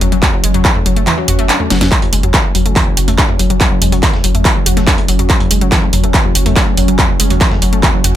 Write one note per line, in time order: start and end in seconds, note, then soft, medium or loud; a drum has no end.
0.00 0.11 F#1 loud
0.00 1.90 F#3 medium
0.00 0.08 F#3 medium
0.00 1.90 C#4 medium
0.00 mid tom medium
0.00 open hi-hat medium
0.12 0.22 F#1 medium
0.12 0.16 F#3 medium
0.12 closed hi-hat medium
0.22 0.26 F#3 medium
0.22 kick loud
0.22 clap loud
0.22 closed hi-hat medium
0.22 mid tom medium
0.33 0.39 F#3 medium
0.44 0.54 F#1 loud
0.44 0.47 G#3 medium
0.44 open hi-hat loud
0.54 0.65 F#1 medium
0.54 0.60 F#3 medium
0.54 closed hi-hat medium
0.54 mid tom medium
0.65 0.71 E3 medium
0.65 kick loud
0.65 clap loud
0.65 closed hi-hat medium
0.75 0.82 A3 medium
0.75 mid tom medium
0.86 0.96 F#1 loud
0.86 0.92 F#3 medium
0.86 open hi-hat medium
0.96 1.07 F#1 medium
0.96 1.06 A3 medium
0.96 closed hi-hat medium
1.07 1.13 E3 loud
1.07 clap loud
1.07 closed hi-hat medium
1.07 mid tom medium
1.18 1.24 F#3 medium
1.28 1.38 F#1 loud
1.28 1.37 F#4 medium
1.28 mid tom medium
1.28 open hi-hat loud
1.39 1.49 F#1 medium
1.39 1.42 A3 loud
1.39 closed hi-hat medium
1.49 1.55 D4 medium
1.49 clap loud
1.49 closed hi-hat medium
1.60 1.66 A3 medium
1.60 mid tom medium
1.70 1.80 F#1 loud
1.70 1.77 F#3 medium
1.70 snare medium
1.70 open hi-hat medium
1.81 1.91 F#1 medium
1.81 1.85 F#3 medium
1.81 snare loud
1.81 closed hi-hat medium
1.81 mid tom loud
1.91 8.16 F#3 medium
1.91 1.95 F#3 medium
1.91 8.16 C#4 medium
1.91 kick loud
1.91 clap loud
1.91 closed hi-hat medium
1.91 tambourine medium
2.02 2.08 F#3 medium
2.02 closed hi-hat soft
2.02 mid tom medium
2.13 2.23 F#1 medium
2.13 2.16 G#3 medium
2.13 open hi-hat loud
2.13 tambourine medium
2.23 2.34 F#1 medium
2.23 2.29 F#3 medium
2.23 closed hi-hat medium
2.23 mid tom medium
2.34 2.40 E3 medium
2.34 kick loud
2.34 snare loud
2.34 clap loud
2.34 closed hi-hat medium
2.34 tambourine medium
2.44 2.51 A3 medium
2.55 2.65 F#1 loud
2.55 2.61 F#3 medium
2.55 mid tom medium
2.55 open hi-hat medium
2.55 tambourine medium
2.66 2.76 F#1 medium
2.66 2.75 A3 medium
2.66 closed hi-hat medium
2.76 2.82 E3 loud
2.76 kick loud
2.76 clap loud
2.76 closed hi-hat medium
2.76 mid tom medium
2.76 tambourine medium
2.87 2.93 F#3 medium
2.97 3.07 F#1 medium
2.97 3.06 F#4 medium
2.97 open hi-hat loud
2.97 tambourine medium
3.08 3.18 F#1 medium
3.08 3.11 A3 loud
3.08 closed hi-hat soft
3.08 closed hi-hat medium
3.08 mid tom medium
3.18 3.24 D4 medium
3.18 kick loud
3.18 snare loud
3.18 clap loud
3.18 closed hi-hat medium
3.18 tambourine medium
3.29 3.35 A3 medium
3.29 mid tom medium
3.39 3.50 F#1 loud
3.39 3.46 F#3 medium
3.39 open hi-hat loud
3.39 tambourine medium
3.50 3.60 F#1 medium
3.50 3.54 F#3 medium
3.50 closed hi-hat medium
3.60 3.64 F#3 medium
3.60 kick loud
3.60 clap loud
3.60 closed hi-hat medium
3.60 mid tom medium
3.60 tambourine medium
3.71 3.77 F#3 medium
3.82 3.92 F#1 loud
3.82 3.85 G#3 medium
3.82 mid tom medium
3.82 open hi-hat loud
3.82 tambourine medium
3.92 4.03 F#1 medium
3.92 3.98 F#3 medium
3.92 closed hi-hat soft
3.92 closed hi-hat medium
4.03 4.09 E3 medium
4.03 kick loud
4.03 snare loud
4.03 clap loud
4.03 closed hi-hat medium
4.03 tambourine medium
4.13 4.20 A3 medium
4.13 snare medium
4.13 mid tom medium
4.24 4.34 F#1 loud
4.24 4.30 F#3 medium
4.24 open hi-hat loud
4.24 tambourine medium
4.34 4.45 F#1 medium
4.34 4.44 A3 medium
4.34 closed hi-hat medium
4.34 mid tom medium
4.45 4.51 E3 loud
4.45 kick loud
4.45 clap loud
4.45 closed hi-hat medium
4.45 tambourine medium
4.56 4.62 F#3 medium
4.66 4.76 F#1 loud
4.66 4.75 F#4 medium
4.66 mid tom medium
4.66 open hi-hat loud
4.66 tambourine medium
4.77 4.87 F#1 medium
4.77 4.80 A3 loud
4.77 snare soft
4.77 closed hi-hat medium
4.87 4.94 D4 medium
4.87 kick loud
4.87 snare loud
4.87 clap loud
4.87 closed hi-hat medium
4.87 mid tom medium
4.87 tambourine medium
4.98 5.04 A3 medium
4.98 closed hi-hat soft
5.08 5.19 F#1 loud
5.08 5.15 F#3 medium
5.08 open hi-hat loud
5.08 tambourine medium
5.19 5.29 F#1 medium
5.19 5.23 F#3 medium
5.19 closed hi-hat medium
5.19 mid tom medium
5.30 5.33 F#3 medium
5.30 kick loud
5.30 clap loud
5.30 closed hi-hat medium
5.30 tambourine medium
5.40 5.46 F#3 medium
5.40 closed hi-hat soft
5.40 mid tom medium
5.51 5.61 F#1 loud
5.51 5.54 G#3 medium
5.51 open hi-hat loud
5.51 tambourine medium
5.61 5.72 F#1 medium
5.61 5.67 F#3 medium
5.61 closed hi-hat medium
5.72 5.78 E3 medium
5.72 kick loud
5.72 snare loud
5.72 clap loud
5.72 closed hi-hat medium
5.72 mid tom medium
5.72 tambourine medium
5.83 5.89 A3 medium
5.93 6.03 F#1 loud
5.93 5.99 F#3 medium
5.93 mid tom medium
5.93 open hi-hat loud
5.93 tambourine medium
6.04 6.14 F#1 medium
6.04 6.13 A3 medium
6.04 closed hi-hat medium
6.14 6.20 E3 loud
6.14 kick loud
6.14 clap loud
6.14 closed hi-hat medium
6.14 tambourine medium
6.25 6.31 F#3 medium
6.25 mid tom medium
6.35 6.45 F#1 medium
6.35 6.45 F#4 medium
6.35 open hi-hat loud
6.35 tambourine medium
6.46 6.56 F#1 medium
6.46 6.50 A3 loud
6.46 closed hi-hat soft
6.46 closed hi-hat medium
6.46 mid tom medium
6.56 6.63 D4 medium
6.56 kick loud
6.56 snare loud
6.56 clap loud
6.56 closed hi-hat medium
6.56 tambourine medium
6.67 6.73 A3 medium
6.77 6.88 F#1 loud
6.77 6.84 F#3 medium
6.77 mid tom medium
6.77 open hi-hat loud
6.77 tambourine medium
6.88 6.98 F#1 medium
6.88 6.92 F#3 medium
6.88 closed hi-hat medium
6.99 7.02 F#3 medium
6.99 kick loud
6.99 clap loud
6.99 closed hi-hat medium
6.99 mid tom medium
6.99 tambourine medium
7.09 7.15 F#3 medium
7.20 7.30 F#1 medium
7.20 7.23 G#3 medium
7.20 open hi-hat loud
7.20 tambourine medium
7.30 7.41 F#1 medium
7.30 7.37 F#3 medium
7.30 closed hi-hat medium
7.30 closed hi-hat soft
7.30 mid tom medium
7.41 7.47 E3 medium
7.41 kick loud
7.41 snare loud
7.41 clap loud
7.41 closed hi-hat medium
7.41 tambourine medium
7.51 7.58 A3 medium
7.51 snare medium
7.51 mid tom medium
7.62 7.72 F#1 loud
7.62 7.68 F#3 medium
7.62 open hi-hat loud
7.62 tambourine medium
7.73 7.83 F#1 medium
7.73 7.82 A3 medium
7.73 closed hi-hat medium
7.83 7.89 E3 loud
7.83 kick loud
7.83 clap loud
7.83 closed hi-hat medium
7.83 mid tom medium
7.83 tambourine medium
7.94 8.00 F#3 medium
8.04 8.14 F#1 medium
8.04 8.14 F#4 medium
8.04 mid tom loud
8.04 open hi-hat loud
8.04 tambourine medium